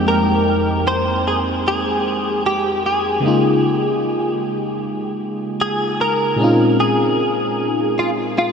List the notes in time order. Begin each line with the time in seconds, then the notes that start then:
Already playing: F2 G#3 A#3 C4 D#4 G5
0.08 A#4
0.88 C5
1.27 G#4
1.68 G#4
2.46 G4
2.86 G#4
3.20 C#3 G#3 A#3
3.26 D#4 F4
4.32 G4
5.61 G#4
6.01 A#4
6.36 A#2 G#3 C4
6.41 C#4 D#4 F4
6.80 G#4
7.99 F4
8.38 F4